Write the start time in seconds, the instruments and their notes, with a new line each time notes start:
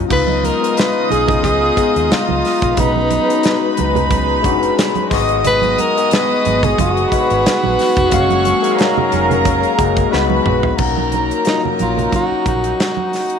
Already playing: tine electric piano F#3 A#3 C#4 E4 F4
0.08 fingered electric bass C#2, string section C#3 B3 D#4 F4, tine electric piano G#3 B3 D#4 F4, violin section D#5 D#6, kick, crash, low conga
0.12 tenor saxophone B4
0.27 muted conga, high conga
0.44 tenor saxophone A#4, closed hi-hat, high conga
0.61 tine electric piano G#3 B3 D#4 F4, closed hi-hat
0.77 tenor saxophone B4, snare, closed hi-hat
1.10 fingered electric bass B1, tenor saxophone G#4, closed hi-hat, high conga
1.28 kick, closed hi-hat, low conga
1.43 fingered electric bass C#2, tenor saxophone G#4, kick, closed hi-hat, muted conga, high conga
1.61 muted conga
1.75 tine electric piano G#3 B3 D#4 G#4, kick, closed hi-hat
1.96 fingered electric bass D#2, closed hi-hat
2.11 tenor saxophone F4, muted fingered electric bass stroke, snare, closed hi-hat, muted conga
2.29 fingered electric bass C#2, muted conga, high conga
2.45 snare, open hi-hat
2.62 fingered electric bass A#1, kick, closed hi-hat
2.75 fingered electric bass B1, tine electric piano G#3 C#4 D#4 F#4, string section G#3 D#4, tenor saxophone D#4, violin section B4 B5, kick, closed hi-hat, muted conga, low conga
2.96 high conga
3.10 closed hi-hat, high conga
3.26 tine electric piano G#3 C#4 D#4 F#4, closed hi-hat
3.43 snare, closed hi-hat
3.77 fingered electric bass C#2, closed hi-hat, high conga
3.95 closed hi-hat, low conga
4.10 kick, closed hi-hat, high conga
4.42 fingered electric bass F#1, tine electric piano G#3 C#4 D4 F#4, kick, closed hi-hat
4.51 tine electric piano D#4
4.63 closed hi-hat
4.79 snare, closed hi-hat
4.95 closed hi-hat, muted conga, high conga
5.10 fingered electric bass G#1, tine electric piano G#3 B3 D#4 F#4, string section B3 F#4 G#4, violin section D#5 D#6, kick, snare, open hi-hat
5.29 closed hi-hat
5.44 tenor saxophone B4, closed hi-hat, muted conga, low conga
5.62 closed hi-hat, muted conga, high conga
5.78 tenor saxophone A#4, closed hi-hat, high conga
5.95 tine electric piano G#3 B3 D#4 G#4, closed hi-hat
6.11 tenor saxophone B4, snare, closed hi-hat, muted conga
6.30 muted conga
6.45 fingered electric bass G#1, closed hi-hat, high conga
6.63 tenor saxophone G#4, kick, closed hi-hat, low conga
6.78 fingered electric bass F#1, tenor saxophone F#4, kick, closed hi-hat, muted conga, high conga
6.97 closed hi-hat
7.11 tine electric piano G#3 B3 D#4 F#4, violin section B4 B5, kick, closed hi-hat
7.30 fingered electric bass G#1, closed hi-hat
7.46 snare, closed hi-hat
7.63 fingered electric bass A#1, high conga
7.79 snare, open hi-hat
7.96 fingered electric bass F1, kick, closed hi-hat
8.10 fingered electric bass F#1, string section F#3 C#4 F5, tine electric piano G#3 A#3 C#4 F5, violin section C#5 C#6, kick, closed hi-hat, muted conga, low conga
8.30 closed hi-hat, muted conga, high conga
8.45 closed hi-hat, high conga
8.62 tine electric piano G#3 A#3 C#4 D#4, closed hi-hat
8.71 tine electric piano F5
8.78 violin section A#4 A#5, snare, closed hi-hat
8.98 muted conga, low conga
9.12 fingered electric bass F1, closed hi-hat, high conga
9.31 closed hi-hat, low conga
9.45 kick, closed hi-hat, muted conga, high conga
9.63 closed hi-hat
9.77 fingered electric bass F#1, tine electric piano G#3 A#3 C#4 F#4, kick, closed hi-hat
9.97 kick, closed hi-hat
10.11 fingered electric bass C#2, string section C#3 G#3 B3 F#4, tine electric piano G#3 B3 D#4 F#4, violin section B4 B5, snare, muted conga
10.30 muted conga, high conga
10.46 fingered electric bass A#1, mid tom
10.63 floor tom
10.77 fingered electric bass B1, string section F#3 A#3 D#4, tine electric piano A#3 C#4 D#4 F#4, violin section A#4 A#5, kick, crash, low conga
10.98 muted conga, high conga
11.12 closed hi-hat, high conga
11.31 closed hi-hat
11.45 tine electric piano A#3 C#4 D#4 F4, tenor saxophone D#4, snare, closed hi-hat
11.54 tine electric piano F#3
11.65 high conga, low conga
11.79 fingered electric bass A#1, tenor saxophone F4, closed hi-hat, high conga
11.97 closed hi-hat, low conga
12.12 tenor saxophone F#4, kick, closed hi-hat, muted conga, high conga
12.31 muted fingered electric bass stroke, muted conga
12.46 fingered electric bass A#1, tenor saxophone F#4, kick, closed hi-hat
12.64 closed hi-hat
12.80 tenor saxophone F#4, snare, closed hi-hat
12.97 muted conga, high conga
13.13 snare, open hi-hat
13.30 closed hi-hat